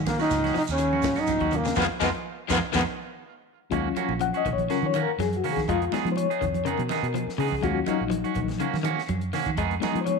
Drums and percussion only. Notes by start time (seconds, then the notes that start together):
0.05 kick, snare, closed hi-hat, high conga, low conga, claves
0.20 snare, shekere
0.31 snare, closed hi-hat, shekere
0.43 snare, closed hi-hat, high conga, claves
0.55 snare, open hi-hat, low conga, shekere
0.67 closed hi-hat, shekere
0.78 closed hi-hat, claves, shekere
0.93 high conga
1.02 kick, snare, closed hi-hat, high conga, shekere
1.16 snare, closed hi-hat, shekere
1.27 kick, closed hi-hat, high conga, claves, shekere
1.40 kick, closed hi-hat
1.51 closed hi-hat, low conga, shekere
1.64 snare, claves, shekere
1.75 kick, snare, high conga, claves, shekere
2.00 kick, snare, high conga, claves, shekere
2.48 kick, snare, high conga, claves, shekere
2.73 kick, snare, high conga, claves, shekere
3.72 kick, closed hi-hat
3.96 closed hi-hat, high conga, claves
4.09 high conga
4.20 closed hi-hat, high conga
4.33 closed hi-hat, claves
4.46 kick, closed hi-hat, low conga
4.58 closed hi-hat, high conga
4.69 snare, closed hi-hat, claves
4.82 high conga
4.94 closed hi-hat, high conga
5.19 snare, closed hi-hat, high conga, claves
5.33 closed hi-hat
5.44 open hi-hat, low conga
5.56 kick, snare, closed hi-hat, high conga, claves
5.68 kick, closed hi-hat, low conga
5.82 closed hi-hat
5.92 snare, closed hi-hat, high conga, claves
6.05 closed hi-hat, high conga
6.16 closed hi-hat, high conga
6.31 closed hi-hat, claves
6.41 kick, closed hi-hat, low conga
6.54 closed hi-hat, high conga
6.66 closed hi-hat, claves
6.78 closed hi-hat, high conga
6.89 snare, closed hi-hat, high conga, low conga
7.04 closed hi-hat
7.14 closed hi-hat, high conga, claves
7.29 snare
7.38 open hi-hat, low conga
7.50 kick, high conga, claves
7.63 kick, closed hi-hat
7.86 closed hi-hat, high conga, claves
8.10 closed hi-hat, high conga
8.24 closed hi-hat, claves
8.34 kick, closed hi-hat, low conga
8.48 snare, closed hi-hat, high conga
8.59 closed hi-hat, claves
8.74 snare, high conga
8.85 closed hi-hat, high conga
8.98 snare
9.08 closed hi-hat, high conga, claves
9.21 closed hi-hat
9.33 snare, open hi-hat, low conga
9.46 kick, closed hi-hat, high conga, claves
9.57 kick, closed hi-hat
9.71 closed hi-hat
9.82 snare, closed hi-hat, high conga, claves
9.96 closed hi-hat
10.07 closed hi-hat, high conga